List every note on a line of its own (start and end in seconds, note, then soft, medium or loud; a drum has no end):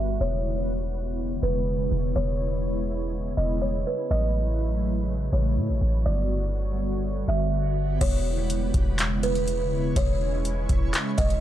0.00 0.18 G1 loud
0.00 0.19 D3 medium
0.00 0.19 G3 medium
0.00 4.07 B3 medium
0.00 0.19 F#4 medium
0.00 0.19 B4 medium
0.21 1.39 E1 loud
0.21 6.02 C#3 medium
0.21 4.07 G#3 medium
0.21 6.02 E4 medium
0.21 4.07 E4 medium
0.21 1.39 C#5 loud
0.21 2.14 C#5 medium
1.43 1.89 E1 loud
1.43 1.66 B4 medium
1.91 2.15 E1 loud
2.16 3.34 E1 loud
2.16 4.09 B4 medium
2.16 3.34 C#5 loud
3.37 3.84 E1 loud
3.37 3.61 D#5 medium
3.62 3.85 C#5 medium
3.87 4.10 B4 medium
4.11 5.29 A1 loud
4.11 6.04 F#3 medium
4.11 6.04 A3 medium
4.11 7.97 F#4 medium
4.11 6.04 C#5 medium
4.11 5.29 D#5 loud
5.33 5.59 A1 loud
5.33 5.56 C#5 medium
5.57 5.71 A2 loud
5.69 5.81 A1 medium
5.81 6.05 A1 loud
6.06 7.24 G1 loud
6.06 7.99 D3 medium
6.06 7.99 G3 medium
6.06 7.99 B3 medium
6.06 7.99 F#4 medium
6.06 7.99 B4 medium
6.06 7.24 D5 loud
7.28 7.98 G1 loud
7.28 7.51 E5 medium
8.01 8.71 E1 loud
8.01 11.40 C#3 medium
8.01 11.40 G#3 medium
8.01 9.94 B3 medium
8.01 11.40 E4 medium
8.01 11.40 C#5 medium
8.01 9.19 C#5 loud
8.01 kick loud
8.01 closed hi-hat medium
8.01 crash medium
8.50 closed hi-hat medium
8.74 9.92 E1 loud
8.74 kick medium
8.74 closed hi-hat medium
8.99 clap medium
8.99 closed hi-hat medium
9.23 9.46 B4 medium
9.23 closed hi-hat medium
9.35 closed hi-hat soft
9.48 closed hi-hat medium
9.96 10.66 E1 loud
9.96 11.40 C#4 medium
9.96 11.14 C#5 loud
9.96 kick loud
9.96 closed hi-hat medium
10.45 closed hi-hat medium
10.69 10.93 E1 loud
10.69 kick medium
10.69 closed hi-hat medium
10.94 clap loud
10.94 closed hi-hat medium
11.18 11.40 E1 loud
11.18 11.40 D#5 medium
11.18 kick medium
11.18 closed hi-hat medium
11.30 closed hi-hat soft